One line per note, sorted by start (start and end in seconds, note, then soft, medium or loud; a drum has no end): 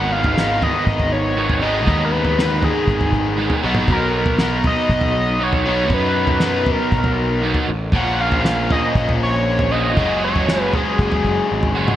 0.00 0.66 G#1 medium
0.00 1.35 G#2 medium
0.00 0.35 D#3 medium
0.00 1.36 D#3 medium
0.00 1.36 G#3 medium
0.00 0.38 B3 medium
0.00 1.37 B3 medium
0.00 0.39 D#4 medium
0.00 1.38 D#4 medium
0.00 2.11 F#4 medium
0.00 1.37 G#4 medium
0.00 0.14 F#5 loud
0.12 0.65 F5 loud
0.24 floor tom medium
0.37 1.61 D#3 medium
0.37 1.63 B3 medium
0.37 1.63 D#4 medium
0.37 snare medium
0.62 0.88 D#5 loud
0.62 floor tom medium
0.87 1.87 G#1 medium
0.87 1.11 D#5 loud
0.87 kick loud
0.99 floor tom medium
1.12 1.63 C#5 loud
1.36 1.60 G#2 medium
1.36 1.61 D#3 medium
1.36 1.61 G#3 medium
1.36 1.63 B3 medium
1.36 1.64 D#4 medium
1.36 1.62 G#4 medium
1.50 floor tom medium
1.61 3.36 G#2 medium
1.61 2.36 D#3 medium
1.61 3.36 D#3 medium
1.61 3.37 G#3 medium
1.61 3.38 B3 medium
1.61 2.38 B3 medium
1.61 2.40 D#4 medium
1.61 3.39 D#4 medium
1.61 3.38 G#4 medium
1.61 2.06 D#5 loud
1.87 2.67 D#2 loud
1.87 kick medium
1.87 floor tom medium
2.05 2.13 A#4 medium
2.11 2.66 B4 medium
2.25 floor tom medium
2.38 3.63 D#3 medium
2.38 3.64 B3 medium
2.38 3.65 D#4 medium
2.38 snare medium
2.62 3.65 G#4 medium
2.62 floor tom medium
2.88 3.48 G#1 medium
2.88 kick loud
3.01 floor tom medium
3.13 kick medium
3.37 3.62 G#2 medium
3.37 3.61 D#3 medium
3.37 3.62 G#3 medium
3.37 3.63 B3 medium
3.37 3.64 D#4 medium
3.37 3.63 G#4 medium
3.50 floor tom medium
3.62 3.84 B1 medium
3.62 5.38 B2 medium
3.62 5.39 F#3 medium
3.62 4.40 F#3 medium
3.62 5.39 B3 medium
3.62 4.40 B3 medium
3.62 5.40 D#4 medium
3.62 4.42 D#4 medium
3.62 5.40 F#4 medium
3.75 mid tom medium
3.88 4.68 B1 medium
3.88 kick loud
3.88 floor tom medium
3.92 4.14 A#4 medium
4.17 4.63 A#4 loud
4.26 floor tom medium
4.39 5.65 F#3 medium
4.39 5.65 B3 medium
4.39 5.66 D#4 medium
4.39 snare medium
4.64 5.45 D#5 loud
4.64 floor tom medium
4.89 5.91 B1 medium
4.89 kick loud
5.01 floor tom medium
5.39 5.64 B2 medium
5.39 5.65 F#3 medium
5.39 5.65 B3 medium
5.39 5.65 D#4 medium
5.39 5.65 F#4 medium
5.43 5.95 C#5 loud
5.53 floor tom medium
5.65 7.41 B2 medium
5.65 6.41 F#3 medium
5.65 7.42 F#3 medium
5.65 7.42 B3 medium
5.65 6.41 B3 medium
5.65 6.41 D#4 medium
5.65 7.43 D#4 medium
5.65 7.43 F#4 medium
5.90 6.71 F#2 loud
5.90 6.44 B4 loud
5.90 kick loud
5.90 floor tom medium
6.27 floor tom medium
6.40 7.68 F#3 medium
6.40 7.68 B3 medium
6.40 7.69 D#4 medium
6.40 snare medium
6.46 6.72 B4 medium
6.66 floor tom medium
6.71 7.71 A#4 medium
6.92 7.53 B1 medium
6.92 kick loud
7.04 floor tom medium
7.42 7.67 B2 medium
7.42 7.67 F#3 medium
7.42 7.68 B3 medium
7.42 7.68 D#4 medium
7.42 7.68 F#4 medium
7.54 floor tom medium
7.68 7.89 A1 loud
7.92 8.74 A#1 medium
7.92 9.70 A#2 medium
7.92 9.71 F3 medium
7.92 8.70 F3 medium
7.92 9.71 A#3 medium
7.92 9.72 C#4 medium
7.92 9.70 F4 medium
7.92 8.22 F#5 loud
7.92 kick loud
7.92 floor tom medium
7.96 8.70 A#3 loud
7.96 8.70 C#4 loud
8.21 8.71 F5 loud
8.32 floor tom medium
8.45 snare medium
8.70 9.97 F3 medium
8.70 9.97 A#3 medium
8.70 9.99 C#4 medium
8.70 8.95 D#5 loud
8.70 floor tom medium
8.95 9.97 A#1 medium
8.95 9.09 D#5 medium
8.95 kick loud
9.09 floor tom medium
9.23 9.73 C#5 loud
9.59 floor tom medium
9.71 9.97 A#2 medium
9.71 9.96 F3 medium
9.71 9.96 A#3 medium
9.71 9.98 C#4 medium
9.71 9.96 F4 medium
9.71 10.23 D#5 loud
9.96 10.77 F#1 loud
9.96 11.74 F#3 medium
9.96 10.73 F#3 medium
9.96 11.74 G#3 medium
9.96 10.73 G#3 medium
9.96 11.75 C#4 loud
9.96 10.73 C#4 medium
9.96 11.74 F#4 medium
9.96 kick loud
9.96 floor tom medium
10.24 10.62 C#5 loud
10.36 floor tom medium
10.48 snare medium
10.62 10.76 B4 loud
10.73 11.96 F#3 medium
10.73 11.96 G#3 medium
10.73 11.96 C#4 medium
10.73 11.76 G#4 loud
10.73 floor tom medium
10.99 11.39 F#1 loud
10.99 kick loud
11.12 floor tom medium
11.25 kick medium
11.52 11.74 G#1 medium
11.63 floor tom medium
11.75 11.96 F#1 medium
11.75 11.96 F#3 medium
11.75 11.96 G#3 medium
11.75 11.96 C#4 medium
11.75 11.96 F#4 medium
11.88 mid tom medium